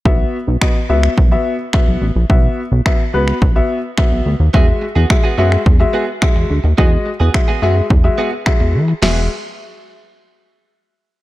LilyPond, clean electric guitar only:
\new Staff \with { instrumentName = "Clean electric guitar" } { \time 4/4 \key e \major \tempo 4 = 107 r1 | r1 | <b fis' gis'>16 r8 <b fis' gis'>16 r16 <b fis' gis'>16 <b fis' gis'>16 r8. <b fis' gis'>16 r4 r16 | <b fis' gis'>16 r8 <b fis' gis'>16 r16 <b fis' gis'>16 <b fis' gis'>16 r8. <b fis' gis'>16 r4 r16 |
<b fis' gis'>16 r2. r8. | }